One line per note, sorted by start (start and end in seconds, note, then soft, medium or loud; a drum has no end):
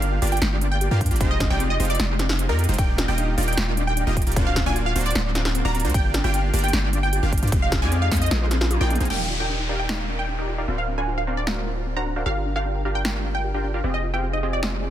0.00 0.20 G1 loud
0.00 0.20 A#3 medium
0.00 0.20 D4 medium
0.00 0.11 D4 medium
0.00 0.20 F4 medium
0.00 0.20 G4 medium
0.00 0.20 F5 medium
0.00 0.25 F5 medium
0.00 closed hi-hat medium
0.12 0.18 G5 loud
0.22 0.40 G1 loud
0.22 0.39 A#3 medium
0.22 0.39 D4 medium
0.22 0.39 F4 medium
0.22 0.39 G4 medium
0.22 0.25 G4 loud
0.22 0.39 D5 loud
0.22 open hi-hat medium
0.27 closed hi-hat medium
0.32 0.40 F4 medium
0.32 0.64 G5 loud
0.32 closed hi-hat soft
0.37 closed hi-hat medium
0.42 0.89 G1 loud
0.42 0.89 A#3 loud
0.42 0.47 D4 loud
0.42 0.89 D4 medium
0.42 0.89 F4 medium
0.42 0.89 G4 medium
0.42 0.89 D5 loud
0.42 snare loud
0.42 closed hi-hat medium
0.52 0.57 F4 medium
0.61 0.70 D4 medium
0.61 closed hi-hat medium
0.71 0.77 G5 loud
0.71 0.96 G5 loud
0.81 0.85 G4 loud
0.81 closed hi-hat medium
0.91 1.12 G2 medium
0.91 1.09 A#3 medium
0.91 1.09 D4 medium
0.91 1.09 F4 medium
0.91 1.00 F4 medium
0.91 1.09 G4 medium
0.91 1.09 F5 medium
1.01 1.07 D4 loud
1.01 kick medium
1.01 closed hi-hat soft
1.06 closed hi-hat medium
1.11 1.22 G1 medium
1.11 1.18 A#3 medium
1.11 1.18 D4 medium
1.11 1.17 F4 medium
1.11 1.18 F4 medium
1.11 1.18 G4 medium
1.11 1.18 D5 medium
1.11 closed hi-hat soft
1.16 closed hi-hat medium
1.21 1.48 F1 loud
1.21 1.48 G#3 medium
1.21 1.29 C4 medium
1.21 1.48 D#4 medium
1.21 1.48 F4 medium
1.21 1.48 G4 medium
1.21 1.48 C5 medium
1.21 kick loud
1.21 closed hi-hat medium
1.21 ride soft
1.31 1.36 D#5 loud
1.31 1.47 D#5 medium
1.40 1.44 F4 loud
1.40 kick loud
1.40 snare medium
1.40 closed hi-hat medium
1.50 1.78 F1 medium
1.50 1.78 G#3 medium
1.50 1.59 D#4 medium
1.50 1.78 D#4 medium
1.50 1.78 F4 medium
1.50 1.78 G4 medium
1.50 1.78 D5 medium
1.50 1.66 G5 medium
1.60 1.66 C4 loud
1.60 closed hi-hat medium
1.70 1.76 D#4 medium
1.70 1.86 D#5 medium
1.80 1.98 F1 loud
1.80 1.97 G#3 medium
1.80 1.89 C4 medium
1.80 1.97 D#4 medium
1.80 1.97 F4 medium
1.80 1.97 G4 medium
1.80 1.97 C5 loud
1.80 open hi-hat medium
1.85 closed hi-hat medium
1.90 2.14 D5 loud
1.90 1.95 D#5 loud
1.90 closed hi-hat soft
1.95 closed hi-hat medium
2.00 2.51 F1 loud
2.00 2.47 G#3 loud
2.00 2.47 D#4 medium
2.00 2.03 F4 loud
2.00 2.47 F4 medium
2.00 2.47 G4 medium
2.00 2.47 C5 loud
2.00 snare loud
2.10 2.18 D#4 medium
2.19 2.25 C4 loud
2.19 snare medium
2.19 closed hi-hat medium
2.29 snare medium
2.39 2.48 C4 medium
2.39 closed hi-hat medium
2.49 2.67 F2 medium
2.49 2.66 G#3 medium
2.49 2.66 D#4 medium
2.49 2.66 F4 medium
2.49 2.66 G4 medium
2.49 2.73 A#4 loud
2.49 2.66 D5 medium
2.49 2.55 D#5 loud
2.59 2.62 F4 loud
2.59 closed hi-hat soft
2.64 closed hi-hat medium
2.69 2.77 F1 loud
2.69 2.76 G#3 medium
2.69 2.77 D#4 medium
2.69 2.76 D#4 medium
2.69 2.76 F4 medium
2.69 2.76 G4 medium
2.69 2.76 C5 medium
2.69 closed hi-hat soft
2.74 closed hi-hat medium
2.78 3.06 A#3 medium
2.78 2.87 D4 medium
2.78 3.06 D#4 medium
2.78 3.06 F4 medium
2.78 3.06 G4 medium
2.78 3.06 D5 medium
2.78 3.03 G5 loud
2.78 kick loud
2.78 closed hi-hat medium
2.78 ride soft
2.89 2.94 D#5 loud
2.98 3.02 F4 loud
2.98 snare medium
2.98 closed hi-hat medium
3.08 3.36 D#1 medium
3.08 3.35 A#3 medium
3.08 3.35 D#4 medium
3.08 3.17 F4 medium
3.08 3.35 F4 medium
3.08 3.35 G4 medium
3.08 3.35 D#5 medium
3.08 3.40 G5 medium
3.18 3.24 D4 loud
3.18 closed hi-hat medium
3.28 3.34 D#4 medium
3.38 3.56 D#1 loud
3.38 3.55 A#3 medium
3.38 3.46 D4 medium
3.38 3.55 D#4 medium
3.38 3.55 F4 medium
3.38 3.55 G4 medium
3.38 3.55 D5 loud
3.38 open hi-hat loud
3.43 closed hi-hat medium
3.48 3.53 D#5 loud
3.48 3.80 G5 loud
3.48 closed hi-hat soft
3.53 closed hi-hat medium
3.57 4.05 D#1 loud
3.57 4.05 A#3 medium
3.57 4.05 D#4 medium
3.57 4.05 F4 medium
3.57 3.61 F4 loud
3.57 4.05 G4 medium
3.57 4.05 D5 loud
3.57 snare loud
3.68 3.76 F4 medium
3.77 3.83 D4 loud
3.77 closed hi-hat medium
3.87 3.93 D#4 medium
3.87 4.11 G5 loud
3.97 4.06 D4 medium
3.97 closed hi-hat medium
4.07 4.25 D#1 loud
4.07 4.24 A#3 medium
4.07 4.24 D#4 medium
4.07 4.24 F4 medium
4.07 4.24 G4 medium
4.07 4.24 D#5 medium
4.07 4.13 D#5 loud
4.17 4.20 F4 loud
4.17 kick medium
4.17 closed hi-hat soft
4.22 closed hi-hat medium
4.27 4.35 D#1 loud
4.27 4.34 A#3 medium
4.27 4.34 D#4 medium
4.27 4.35 F4 medium
4.27 4.34 F4 medium
4.27 4.34 G4 medium
4.27 4.34 D5 medium
4.27 closed hi-hat soft
4.32 closed hi-hat medium
4.36 4.64 D1 loud
4.36 4.64 A#3 medium
4.36 4.42 C4 loud
4.36 4.64 D4 medium
4.36 4.64 F4 medium
4.36 4.64 F#4 medium
4.36 4.64 C5 medium
4.36 kick loud
4.36 closed hi-hat medium
4.36 ride soft
4.46 4.52 D4 medium
4.46 4.63 F5 medium
4.56 4.65 C4 medium
4.56 kick loud
4.56 snare medium
4.56 closed hi-hat medium
4.66 4.94 D1 medium
4.66 4.93 A#3 medium
4.66 4.93 D4 medium
4.66 4.93 F4 medium
4.66 4.93 F#4 medium
4.66 4.93 D5 medium
4.66 4.72 D5 loud
4.66 4.82 G#5 medium
4.76 4.79 F4 loud
4.76 closed hi-hat medium
4.86 4.94 F4 medium
4.86 5.02 F5 medium
4.96 5.13 D1 loud
4.96 5.13 A#3 medium
4.96 5.01 C4 loud
4.96 5.13 D4 medium
4.96 5.13 F4 medium
4.96 5.13 F#4 medium
4.96 5.13 C5 loud
4.96 open hi-hat loud
5.01 closed hi-hat medium
5.06 5.11 D4 medium
5.06 5.30 D5 loud
5.06 closed hi-hat soft
5.11 closed hi-hat medium
5.15 5.63 D1 loud
5.15 5.62 A#3 loud
5.15 5.24 C4 medium
5.15 5.62 D4 medium
5.15 5.62 F4 medium
5.15 5.62 F#4 medium
5.15 5.62 C5 loud
5.15 snare loud
5.25 5.31 D5 loud
5.35 5.39 F4 loud
5.35 snare medium
5.35 closed hi-hat medium
5.45 5.54 F4 medium
5.45 snare medium
5.55 5.61 C4 loud
5.55 closed hi-hat medium
5.65 5.86 D1 loud
5.65 5.82 A#3 medium
5.65 5.82 D4 medium
5.65 5.71 D4 medium
5.65 5.82 F4 medium
5.65 5.82 F#4 medium
5.65 5.82 D5 medium
5.65 5.89 A#5 medium
5.75 5.83 C4 medium
5.75 closed hi-hat soft
5.80 closed hi-hat medium
5.85 5.92 D2 loud
5.85 5.92 A#3 medium
5.85 5.92 D4 medium
5.85 5.92 F4 medium
5.85 5.92 F#4 medium
5.85 5.92 C5 medium
5.85 5.90 D5 loud
5.85 closed hi-hat soft
5.90 closed hi-hat medium
5.94 6.22 G1 loud
5.94 6.22 A#3 medium
5.94 6.22 D4 medium
5.94 6.22 F4 medium
5.94 6.22 G4 medium
5.94 5.98 G4 loud
5.94 6.22 D5 medium
5.94 6.19 G5 loud
5.94 kick loud
5.94 closed hi-hat medium
5.94 ride soft
6.04 6.13 G4 medium
6.14 6.20 D4 loud
6.14 snare medium
6.14 closed hi-hat medium
6.24 6.52 G1 loud
6.24 6.51 A#3 medium
6.24 6.51 D4 medium
6.24 6.51 F4 medium
6.24 6.30 F4 medium
6.24 6.51 G4 medium
6.24 6.51 F5 medium
6.24 6.56 G5 loud
6.34 6.42 D4 medium
6.34 closed hi-hat medium
6.44 6.49 G5 loud
6.53 6.71 G1 loud
6.53 6.71 A#3 medium
6.53 6.71 D4 medium
6.53 6.71 F4 medium
6.53 6.71 G4 medium
6.53 6.57 G4 loud
6.53 6.71 D5 loud
6.53 open hi-hat loud
6.59 closed hi-hat medium
6.64 6.72 G4 medium
6.64 6.96 G5 loud
6.64 closed hi-hat medium
6.68 closed hi-hat medium
6.73 7.21 G1 loud
6.73 7.20 A#3 loud
6.73 7.20 D4 medium
6.73 6.79 D4 loud
6.73 7.20 F4 medium
6.73 7.20 G4 medium
6.73 7.20 D5 loud
6.73 snare loud
6.73 closed hi-hat medium
6.83 6.89 F4 medium
6.93 7.02 D4 medium
6.93 closed hi-hat medium
7.03 7.27 G5 loud
7.03 7.09 G5 loud
7.13 7.16 G4 loud
7.13 closed hi-hat medium
7.23 7.41 G1 loud
7.23 7.40 A#3 medium
7.23 7.40 D4 medium
7.23 7.40 F4 medium
7.23 7.40 G4 medium
7.23 7.31 G4 medium
7.23 7.40 F5 medium
7.33 7.38 D4 loud
7.33 kick medium
7.33 closed hi-hat medium
7.38 closed hi-hat medium
7.43 7.50 G2 loud
7.43 7.50 A#3 medium
7.43 7.50 D4 medium
7.43 7.50 F4 medium
7.43 7.48 F4 medium
7.43 7.50 G4 medium
7.43 7.50 D5 medium
7.43 closed hi-hat medium
7.47 closed hi-hat medium
7.52 7.84 F1 loud
7.52 7.80 G#3 medium
7.52 7.61 C4 medium
7.52 7.80 D#4 medium
7.52 7.80 F4 medium
7.52 7.80 G4 medium
7.52 7.80 C5 medium
7.52 kick loud
7.52 closed hi-hat medium
7.52 ride soft
7.62 7.68 D#5 loud
7.62 7.78 F5 medium
7.72 7.75 F4 loud
7.72 kick loud
7.72 snare medium
7.72 closed hi-hat medium
7.82 8.10 F2 loud
7.82 8.09 G#3 medium
7.82 8.09 D#4 medium
7.82 7.90 F4 medium
7.82 8.09 F4 medium
7.82 8.09 G4 medium
7.82 8.09 D5 medium
7.82 7.98 G#5 medium
7.92 7.98 C4 loud
7.92 closed hi-hat medium
8.02 8.07 D#4 medium
8.02 8.18 F5 medium
8.11 8.29 F2 loud
8.11 8.29 G#3 medium
8.11 8.20 C4 medium
8.11 8.29 D#4 medium
8.11 8.29 G4 medium
8.11 8.29 C5 loud
8.11 kick medium
8.11 snare medium
8.11 open hi-hat loud
8.17 closed hi-hat medium
8.21 8.27 D#5 loud
8.21 8.46 D#5 loud
8.21 closed hi-hat medium
8.26 closed hi-hat medium
8.31 8.79 A#1 loud
8.31 8.78 A#3 loud
8.31 8.78 D#4 medium
8.31 8.35 F4 loud
8.31 8.78 F4 medium
8.31 8.78 G#4 medium
8.31 8.78 C5 loud
8.31 snare loud
8.31 closed hi-hat medium
8.31 high tom medium
8.41 8.50 F4 medium
8.41 high tom medium
8.51 8.60 C4 medium
8.51 snare medium
8.51 closed hi-hat medium
8.61 8.67 F4 loud
8.61 snare medium
8.61 mid tom medium
8.71 8.76 F4 medium
8.71 closed hi-hat medium
8.71 mid tom medium
8.81 8.98 A#1 loud
8.81 8.98 A#3 medium
8.81 8.98 D#4 medium
8.81 8.98 F4 medium
8.81 8.84 F4 loud
8.81 8.98 G#4 medium
8.81 8.98 D5 medium
8.81 9.05 G5 loud
8.81 mid tom medium
8.90 8.96 F4 medium
8.90 closed hi-hat medium
8.90 mid tom loud
8.95 closed hi-hat medium
9.00 9.08 A#1 medium
9.00 9.08 A#3 medium
9.00 9.08 D#4 medium
9.00 9.04 D#4 medium
9.00 9.08 F4 medium
9.00 9.08 G#4 medium
9.00 9.08 C5 medium
9.00 closed hi-hat medium
9.00 mid tom medium
9.05 closed hi-hat medium
9.10 9.19 D4 medium
9.10 9.37 D#4 medium
9.10 9.37 G4 medium
9.10 9.37 A#4 medium
9.10 9.37 D5 medium
9.10 9.37 F5 medium
9.10 9.34 G5 medium
9.10 crash medium
9.10 downlifter medium
9.20 9.26 D#5 medium
9.30 9.33 F4 loud
9.40 9.67 D#4 medium
9.40 9.48 F4 medium
9.40 9.67 G4 medium
9.40 9.67 A#4 medium
9.40 9.67 D5 medium
9.40 9.67 G5 medium
9.40 9.72 G5 medium
9.50 9.55 D4 loud
9.60 9.65 D#4 medium
9.69 9.78 D4 medium
9.69 9.87 D#4 medium
9.69 9.87 G4 medium
9.69 9.87 A#4 medium
9.69 9.87 D5 medium
9.69 9.87 F5 loud
9.79 9.85 D#5 loud
9.79 10.12 G5 medium
9.89 10.36 D#4 medium
9.89 9.93 F4 loud
9.89 10.36 G4 medium
9.89 10.36 A#4 medium
9.89 10.36 D5 medium
9.89 10.36 F5 loud
9.89 finger snap medium
9.89 snare loud
9.99 10.07 F4 medium
10.09 10.15 D4 medium
10.19 10.24 D#4 medium
10.19 10.43 G5 loud
10.29 10.37 D4 medium
10.39 10.56 D#4 medium
10.39 10.56 G4 medium
10.39 10.56 A#4 medium
10.39 10.56 D5 medium
10.39 10.44 D#5 loud
10.39 10.56 G5 medium
10.48 10.52 F4 loud
10.58 10.66 D#4 medium
10.58 10.67 F4 medium
10.58 10.66 G4 medium
10.58 10.66 A#4 medium
10.58 10.66 D5 medium
10.58 10.66 F5 medium
10.68 12.24 D1 medium
10.68 10.74 C4 loud
10.68 10.95 D4 medium
10.68 10.95 F#4 medium
10.68 10.95 A#4 medium
10.68 10.95 C5 medium
10.68 10.95 F5 medium
10.78 10.84 D4 medium
10.78 10.94 F5 medium
10.88 10.96 C4 medium
10.98 11.25 D4 medium
10.98 11.25 F#4 medium
10.98 11.25 A#4 medium
10.98 11.25 C5 medium
10.98 11.03 D5 loud
10.98 11.25 F#5 medium
10.98 11.14 G#5 medium
11.08 11.11 F4 loud
11.18 11.26 F4 medium
11.18 11.34 F5 medium
11.27 11.33 C4 loud
11.27 11.45 D4 medium
11.27 11.45 F#4 medium
11.27 11.45 A#4 medium
11.27 11.45 C5 medium
11.27 11.45 F5 medium
11.37 11.43 D4 medium
11.37 11.61 D5 medium
11.47 11.56 C4 medium
11.47 11.94 D4 medium
11.47 11.94 F#4 medium
11.47 11.94 A#4 medium
11.47 11.94 C5 medium
11.47 11.94 F5 loud
11.47 finger snap medium
11.47 snare loud
11.57 11.63 D5 loud
11.67 11.70 F4 loud
11.77 11.85 F4 medium
11.86 11.92 C4 loud
11.96 12.02 D4 medium
11.96 12.14 D4 medium
11.96 12.14 F#4 medium
11.96 12.14 A#4 medium
11.96 12.14 C5 medium
11.96 12.14 F#5 medium
11.96 12.21 A#5 medium
12.06 12.15 C4 medium
12.16 12.24 D4 medium
12.16 12.24 F#4 medium
12.16 12.24 A#4 medium
12.16 12.24 C5 medium
12.16 12.22 D5 medium
12.16 12.24 F5 medium
12.26 13.82 G1 medium
12.26 12.53 D4 medium
12.26 12.53 F4 medium
12.26 12.29 G4 loud
12.26 12.53 G4 medium
12.26 12.53 A#4 medium
12.26 12.50 F5 loud
12.26 12.53 F5 medium
12.36 12.44 G4 medium
12.46 12.51 D4 loud
12.56 12.83 D4 medium
12.56 12.61 F4 medium
12.56 12.83 F4 medium
12.56 12.83 G4 medium
12.56 12.83 A#4 medium
12.56 12.88 F5 medium
12.56 12.83 G5 medium
12.65 12.74 D4 medium
12.75 12.81 G5 loud
12.85 13.03 D4 medium
12.85 13.03 F4 medium
12.85 12.89 G4 loud
12.85 13.03 G4 medium
12.85 13.03 A#4 medium
12.85 13.03 F5 medium
12.95 13.04 G4 medium
12.95 13.27 G5 medium
13.05 13.11 D4 medium
13.05 13.52 D4 medium
13.05 13.52 F4 medium
13.05 13.52 G4 medium
13.05 13.52 A#4 medium
13.05 13.52 F5 loud
13.05 finger snap medium
13.05 snare loud
13.15 13.20 F4 medium
13.25 13.33 D4 medium
13.35 13.59 G5 medium
13.35 13.40 G5 medium
13.44 13.48 G4 loud
13.54 13.72 D4 medium
13.54 13.72 F4 medium
13.54 13.63 G4 medium
13.54 13.72 G4 medium
13.54 13.72 A#4 medium
13.54 13.72 G5 medium
13.64 13.70 D4 loud
13.74 13.82 D4 medium
13.74 13.82 F4 medium
13.74 13.80 F4 medium
13.74 13.82 G4 medium
13.74 13.82 A#4 medium
13.74 13.82 F5 medium
13.84 14.90 F1 medium
13.84 13.92 C4 medium
13.84 14.11 C4 medium
13.84 14.11 F4 medium
13.84 14.11 G4 medium
13.84 14.11 G#4 medium
13.84 14.11 D#5 medium
13.94 14.10 D#5 medium
13.94 13.99 D#5 medium
14.04 14.07 F4 medium
14.14 14.41 C4 medium
14.14 14.22 F4 medium
14.14 14.41 F4 medium
14.14 14.41 G4 medium
14.14 14.41 G#4 medium
14.14 14.41 F5 medium
14.14 14.30 G5 medium
14.23 14.29 C4 loud
14.33 14.39 D#4 medium
14.33 14.49 D#5 medium
14.43 14.60 C4 medium
14.43 14.52 C4 medium
14.43 14.60 F4 medium
14.43 14.60 G4 medium
14.43 14.60 G#4 medium
14.43 14.60 D#5 loud
14.53 14.77 D5 medium
14.53 14.59 D#5 loud
14.63 14.90 C4 medium
14.63 14.66 F4 loud
14.63 14.90 F4 medium
14.63 14.90 G4 medium
14.63 14.90 G#4 medium
14.63 14.90 D#5 loud
14.63 finger snap medium
14.63 snare loud
14.73 14.81 F4 medium
14.82 14.88 G#4 loud